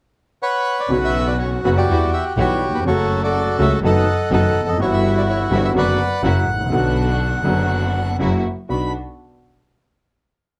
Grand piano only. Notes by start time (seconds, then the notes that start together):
0.88 B1 B2 C#3 F#3 B3 F#4
1.64 F#1 F#2 C#3 F#3 B3 F#4
1.89 E2 E3 G3 B3 F#4
2.38 B1 B2 E3 G3 B3 F#4
2.69 D#2
2.75 E2
2.81 F2
2.85 F#2 C#3 F#3 A3 F#4
3.58 C#2 C#3 F#3 A3 F#4
3.83 F#2 D#3 F#3 A3 B3 F#4
4.31 F#2 D#3 F#3 A3 B3 F#4
4.61 E2
4.67 F2
4.73 F#2
4.77 G1 G2 E3 G3 B3
4.81 F#4
5.50 G1 G2 E3 G3 B3 F#4
5.74 F#2 D3 F#3 B3 F#4
6.23 F#2 C#3 F#3 A#3 E4
6.53 G#1
6.60 A1
6.66 A#1 D3
6.71 B1 B2 F#3 B3 F#4
7.43 F#1 F#2 D3 F#3 B3 F#4
8.18 F#2 C#3 F#3 A#3 E4
8.69 B1 B3 D4 F#4